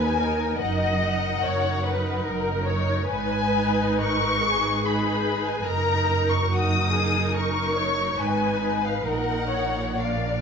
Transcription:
Already playing: D#2 D#4 A#4 B4 G#5
0.18 D#4 A#4
0.59 F#1 F#2 D#4 A#4 D#5 F#5
1.01 D#4 A#4
1.42 F#1 F#2 C#5
1.85 D#4 A#4 B4
2.25 F#1 F#2 A#4
2.66 D#4 A#4 C#5
3.07 G#1 G#2 D#4 B4 G#5
4.01 A#4 C#6
4.45 G#4
4.85 D#4 B4 B5
5.46 G#5
5.65 F#1 F#2 D#4 A#4 A#5
6.30 C#6
6.52 D#4 F#4 A#4 D#6
6.93 G#4
7.36 A#4 C#6
7.76 C#5
8.17 G#1 G#2 D#4 B4 G#5
8.84 F5
9.04 A#1 A#2 D#4 A#4 F#5
9.50 C#5
9.97 D4 A#4 D5 F5

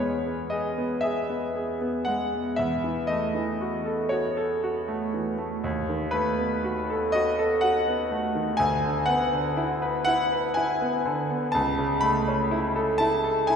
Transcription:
Already playing: E2 B2 B4 C#5
0.00 G#3
0.26 B3
0.50 G#4 D#5
0.78 B3
1.01 G#4 E5
1.29 B3
1.55 G#4
1.81 B3
2.05 G#3 F#5
2.33 B2
2.56 E2 E5
2.84 E3
3.07 A3 D#5
3.35 E3
3.61 F#4
3.86 A4
4.09 F#4 C#5
4.37 A4
4.64 F#4
4.88 A3
5.14 E3
5.38 A3
5.64 D#2
5.89 D#3
6.11 A3 B4
6.39 B3
6.64 F#4
6.90 A4
7.12 F#4 D#5
7.39 A4
7.61 F#4 F#5
7.88 B3
8.12 A3
8.35 D#3
8.57 D2 G#5
8.84 D3
9.06 B3 F#5
9.33 D3
9.57 E4
9.82 B4
10.05 E4 F#5
10.32 B4
10.54 E4 G#5
10.81 B3
11.06 D3
11.30 B3
11.52 C#2 A5
11.78 C#3
12.01 A3 B5
12.27 C#4
12.51 E4
12.76 A4
12.98 E4 A5
13.24 A4
13.47 E4 G#5

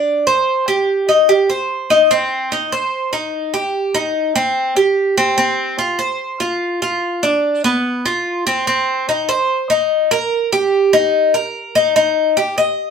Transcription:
Already playing: D4
0.27 C5
0.68 G4
1.09 D#4
1.29 G4
1.50 C5
1.90 D#4
2.11 C4
2.52 D#4
2.72 C5
3.13 D#4
3.54 G4
3.95 D#4
4.36 C4
4.77 G4
5.17 C4
5.38 C4
5.79 F4
5.99 C5
6.40 F4
6.82 F4
7.23 D4
7.64 B3
8.06 F4
8.47 C4
8.67 C4
9.09 D#4
9.29 C5
9.70 D#4
10.11 A#4
10.53 G4
10.93 D#4
11.34 A#4
11.75 D#4
11.96 D#4
12.37 G4
12.58 D#5

